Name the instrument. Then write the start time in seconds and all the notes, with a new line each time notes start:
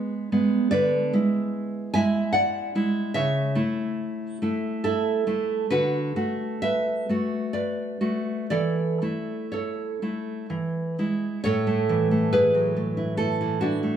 nylon-string guitar
Already playing: G#3 B3
0.32 G#3 B3
0.71 D3 B4 D5
1.13 G#3 E4
1.94 G#3 E4 E5 G#5
2.33 D5 F#5
2.75 G#3 E4
3.14 C#3 C#5 E5
3.55 A3 E4
4.42 A3 E4
4.84 E4 A4
5.27 A3 E4
5.70 D3 F#4 B4
6.16 A3 F#4
6.62 B4 E5
7.09 A3 F#4
7.53 B4 D5
8.01 A3 F#4
8.50 E3 A4 D5
9.02 A3 E4
9.52 A4 C#5
10.02 A3 E4
10.50 E3
10.99 G#3 E4
11.44 A2 A4 C#5
11.67 A3
11.89 E3
12.11 A3
12.33 E3 G#4 B4
12.55 F#3
12.76 A3
12.97 E4
13.17 A3 E4 A4
13.41 E3
13.61 D4 E4 F#4
13.83 A3